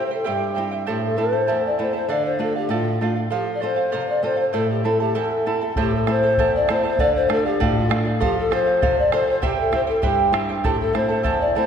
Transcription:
Already playing: C3 C4 E4 G4 C5 E5
0.06 C5
0.11 E4 A4 C5 G5
0.24 G2 E4 G4 C5 E5 G5
0.55 C4 E4 G4 C5 E5 G5
0.71 E4 C5 G5
0.86 A2 E4 G4 A4 C5 E5 A5
1.04 A4
1.16 A3 C4 E4 A4 C5 E5 A5
1.32 E4 A4 A5
1.47 E2 E4 A4 C5 E5 A5
1.66 D5
1.78 A3 C4 E4 A4 C5 E5 A5
1.93 E4 A4 C5 A5
2.09 D3 A4 D5 F5
2.25 C5
2.39 A3 D4 F4 A4 D5 F5
2.55 G4 D5 F5
2.69 A2 F4 A4 D5 F5
3.01 A3 D4 F4 A4 D5 F5
3.16 D5 F5
3.30 F3 G4 A4 C5 F5
3.54 D5
3.60 C4 F4 A4 C5 F5
3.76 C5 F5
3.92 C3 A4 C5 F5
4.09 D5
4.23 C4 F4 A4 C5 F5
4.36 C5 F5
4.53 A2 E4 A4 C5 E5 A5
4.70 G4
4.84 A3 C4 E4 A4 E5 A5
5.00 E4 G4 A4 A5
5.15 E2 E4 A4 C5 E5 A5
5.46 A3 C4 E4 A4 E5 A5
5.61 E4 A4 A5
5.76 A2 E4 G4 A4 C5 E5 A5, bombo low
5.95 A4
6.07 A3 C4 E4 A4 C5 E5 A5, bombo rim
6.23 E4 A4 A5
6.38 E2 E4 A4 C5 E5 A5, bombo low
6.55 D5
6.68 A3 C4 E4 A4 C5 E5 A5, bombo rim
6.83 E4 A4 C5 A5
6.99 D3 A4 D5 F5, bombo low
7.15 C5
7.29 A3 D4 F4 A4 D5 F5, bombo rim
7.46 G4 D5 F5
7.60 A2 F4 A4 D5 F5, bombo low
7.68 G4
7.78 F4
7.89 A3 D4 F4 A4 D5 F5, bombo rim
8.05 D5 F5
8.20 F3 G4 A4 C5 F5, bombo low
8.39 A4
8.51 C4 F4 A4 C5 F5, bombo rim
8.66 C5 F5
8.82 C3 A4 C5 F5, bombo low
8.98 D5
9.12 C4 F4 A4 C5 F5, bombo rim
9.27 C5 F5
9.42 C3 E4 G4 C5 E5 G5, bombo low
9.55 C5
9.60 A4
9.72 C4 E4 G4 C5 E5 G5, bombo rim, bombo low
9.87 E4 A4 C5 G5
10.02 G2 E4 G4 C5 E5 G5, bombo low
10.32 C4 E4 G4 C5 E5 G5, bombo rim
10.49 E4 C5 G5
10.64 A2 E4 G4 A4 C5 E5 A5, bombo low
10.79 A4
10.93 A3 C4 E4 A4 C5 E5 A5, bombo rim
11.08 E4 A4 A5
11.23 E2 E4 A4 C5 E5 A5, bombo low
11.40 D5
11.55 A3 C4 E4 A4 C5 E5 A5

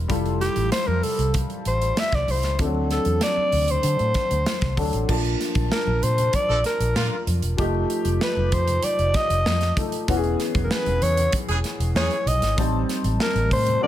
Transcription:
0.08 F1 G3 E4 F4 A4, kick, closed hi-hat
0.25 closed hi-hat, muted conga
0.41 G4, snare, closed hi-hat
0.56 A1, closed hi-hat, high conga
0.72 C5, muted fingered electric bass stroke, snare, closed hi-hat
0.87 F2 A#4, high conga
1.03 A4, open hi-hat, low conga
1.18 C2, closed hi-hat, low conga
1.34 kick, closed hi-hat, muted conga, high conga
1.50 closed hi-hat
1.65 A1 C5, closed hi-hat
1.82 closed hi-hat
1.96 E5, snare, closed hi-hat, muted conga, high conga
2.12 C2 D5, kick, snare, closed hi-hat
2.28 C2 C5, open hi-hat, high conga, low conga
2.43 C#2, snare, closed hi-hat
2.58 D2 F3 C4 D4 A4, kick, closed hi-hat
2.65 F#3
2.75 muted conga
2.90 A4, snare, closed hi-hat
3.05 E2, closed hi-hat, high conga
3.21 D5, snare, closed hi-hat
3.37 high conga
3.52 D2, open hi-hat, low conga
3.68 C5, closed hi-hat, low conga
3.83 D3, closed hi-hat, muted conga, high conga
3.99 A2, closed hi-hat, muted conga
4.14 kick, snare, closed hi-hat, high conga
4.31 D2, closed hi-hat
4.46 snare, closed hi-hat, high conga
4.61 C2, kick, snare, closed hi-hat
4.77 D2 F#3 C4 D4 A4, kick, open hi-hat, high conga, low conga
4.93 A1, closed hi-hat
5.08 A#1 F3 A#3 D4 A5, kick, crash
5.24 closed hi-hat
5.40 snare, closed hi-hat
5.55 A#1, kick, closed hi-hat, high conga
5.72 A#4, snare
5.87 A#1, muted conga, high conga
6.02 A#2 C5, closed hi-hat, low conga
6.18 closed hi-hat, low conga
6.33 D5, kick, closed hi-hat, high conga
6.48 A#1 F3 D4 A4, muted conga
6.64 A#4, snare, closed hi-hat
6.80 A#1, closed hi-hat
6.95 A#2 D3 A#3 F4, snare, muted conga, high conga
7.13 muted conga
7.27 F2, closed hi-hat, high conga, low conga
7.42 E1, closed hi-hat
7.57 F1 F3 A3 D#4 G4, kick, closed hi-hat, muted conga
7.75 muted conga
7.90 closed hi-hat
8.05 F1, closed hi-hat, high conga
8.21 B4, snare
8.36 F1, muted conga, high conga
8.52 F2 C5, kick, closed hi-hat, low conga
8.68 closed hi-hat, low conga
8.83 D5, closed hi-hat, muted conga, high conga
8.99 F1, closed hi-hat, muted conga
9.14 D#5, kick, snare, closed hi-hat
9.30 F1, closed hi-hat
9.46 F2, snare, muted conga, high conga
9.61 snare, closed hi-hat, muted conga
9.77 F3 A3 D#4 A4, kick, closed hi-hat, high conga, low conga
9.92 closed hi-hat
10.08 E1 E3 B3 C#4 F#4, kick, closed hi-hat
10.17 G#4
10.24 closed hi-hat, muted conga
10.39 snare, closed hi-hat
10.55 E1, kick, closed hi-hat, high conga
10.64 A#4
10.71 B4, snare
10.86 E1, closed hi-hat, high conga
11.02 E2 C#5, closed hi-hat, low conga
11.17 closed hi-hat, low conga
11.32 kick, closed hi-hat, high conga
11.48 E1 E3 C#4 G#4, closed hi-hat, muted conga
11.64 snare, closed hi-hat
11.79 E1, closed hi-hat
11.95 E2 E3 C#4 G#4 C#5, snare, muted conga, high conga
12.11 closed hi-hat
12.26 B1 D#5, closed hi-hat, high conga, low conga
12.41 G#1, snare, closed hi-hat
12.57 A1 G3 C4 D#4 A5, kick, closed hi-hat, muted conga
12.89 snare, closed hi-hat
13.04 A1, closed hi-hat, high conga
13.20 A#4, snare
13.35 A1, closed hi-hat, muted conga, high conga
13.51 A2 C5, kick, open hi-hat, low conga
13.67 closed hi-hat, low conga
13.81 F#3 C4 D4 A#4 D5

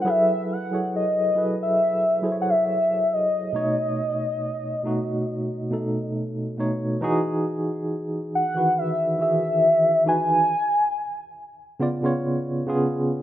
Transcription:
0.02 F#3 E4 F#5
0.06 G#4 A4 B4 E5
0.52 F#5
0.71 F#3 E4 G#4 A4 C#5
0.96 D#5
1.35 F#3 E4 G#4 A4 B4
1.63 E5
2.22 F#3 E4 G#4 A4 C5
2.32 C#5
2.41 F#5
2.50 E5
3.13 D#5
3.53 B2 A3 D#4 C#5
4.83 B2 A3 D#4 F#4
5.70 B2 A3 D#4 A4
6.57 B2 A3 D#4 C#5
7.01 E3 D#4 F#4 G#4
8.35 F#5
8.55 D#3 E3 F#4 B4
8.78 E5
9.19 D#3 E3 F#4 G#4 E5
10.05 E3 D#4 F#4 B4 G#5
11.80 C#3 B3 F4 D5
12.03 C#3 B3 F4 C#5
12.66 C#3 B3 F4 G#4

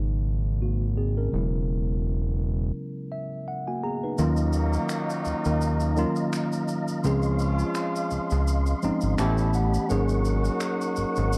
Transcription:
Already playing: G#1 C#3 F#3 G#3 A#3 D#4
0.62 A#3 F#4
0.97 C4 G#4
1.18 C#4 A#4
1.31 E1 C#3 F#3 G#3 B3
1.35 E4
3.12 E5
3.48 F#5
3.68 A#3 F#4 G#5
3.83 B3 G#4 A#5
4.04 D#4 B4
4.17 D#2 D#3 F#3 A#3 C#4 D#4 F4 D#5 F5 A#5, shaker
4.37 shaker
4.53 shaker
4.73 shaker
4.89 finger snap, shaker
5.10 shaker
5.25 D#2, shaker
5.45 D#2, shaker
5.61 shaker
5.80 shaker
5.97 D#3 F#3 A#3 C#4 F4, shaker
6.16 shaker
6.33 finger snap, shaker
6.52 shaker
6.68 shaker
6.88 shaker
7.03 C#2 F3 G#3 C4 C#4 F4 G#4 C6, shaker
7.22 shaker
7.39 shaker
7.59 shaker
7.75 finger snap, shaker
7.96 shaker
8.11 C#2, shaker
8.30 C#2, shaker
8.47 shaker
8.66 shaker
8.82 G#1 F3 G#3 C4 C#4 D#4, shaker
9.01 G#1, shaker
9.18 A1 E3 A3 B3 C#4 E4 G4 A4 A5 B5, finger snap, shaker
9.38 shaker
9.54 F#5, shaker
9.74 shaker
9.89 G#1 F#3 A#3 C#4 D#4 F#4 G#4 A#4 F#5 C#6, shaker
10.09 shaker
10.25 shaker
10.45 shaker
10.60 finger snap, shaker
10.81 shaker
10.96 G#1, shaker
11.16 G#1, shaker
11.33 shaker

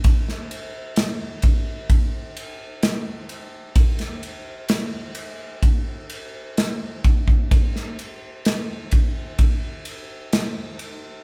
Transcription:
0.04 kick, ride
0.29 snare
0.51 ride
0.96 snare, ride
1.42 kick, ride
1.90 kick, ride
2.37 ride
2.83 snare, ride
3.29 ride
3.76 kick, ride
3.99 snare, ride
4.23 ride
4.69 snare, ride
5.15 ride
5.63 kick, ride
6.10 ride
6.57 snare, ride
7.04 kick, ride
7.28 kick
7.51 kick, ride
7.76 snare
7.99 ride
8.45 snare, ride
8.91 kick, ride
9.39 kick, ride
9.85 ride
10.33 snare, ride
10.79 ride

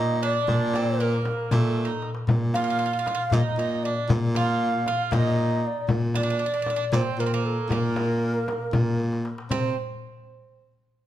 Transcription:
Already playing: A#2 D#4 D#5
0.23 D4 D5
0.48 A#2, frame drum, darbuka dum
0.74 C4, darbuka tek, frame drum
1.00 A#3 A#4
1.25 darbuka tek, frame drum
1.51 A#2 A3 A4, frame drum, darbuka dum
1.77 darbuka tek
1.85 D#4
1.91 darbuka ka
2.02 darbuka tek
2.15 darbuka ka
2.28 A#2, darbuka dum, frame drum
2.54 F4 F5, darbuka tek, frame drum
2.64 F4
2.70 F4
2.79 F4
2.86 F4
2.93 F4
2.99 F4
3.06 F4, darbuka tek, frame drum
3.15 F4
3.30 A#2 D#4 D#5 F5, darbuka dum, frame drum
3.57 A#2 D#4, darbuka ka
3.83 D4 D5, darbuka ka
4.09 A#2, darbuka dum, frame drum
4.35 F4 F5, darbuka tek, frame drum
4.86 F4, darbuka tek, frame drum
5.11 A#2 D#4 F5, frame drum, darbuka dum
5.16 D#5
5.63 D5 D#5
5.88 A#2, frame drum, darbuka dum
6.14 D4 D5, darbuka tek, frame drum
6.23 D4
6.30 D4
6.39 D4
6.46 D4
6.54 D4
6.62 D4
6.66 D4, darbuka tek, frame drum
6.76 D4
6.92 A#2 C4 C5, frame drum, darbuka dum
7.18 A#2 A#3 A#4, darbuka ka
7.26 C4
7.34 A#3
7.46 A4
7.69 A#2 A#3, frame drum, darbuka dum
7.73 A#4
7.96 darbuka tek, frame drum
8.23 darbuka ka
8.48 darbuka tek, frame drum
8.73 A#2, frame drum, darbuka dum
9.00 darbuka tek
9.13 darbuka ka
9.25 darbuka tek
9.38 darbuka ka
9.50 C3 C4 C5, frame drum, darbuka dum

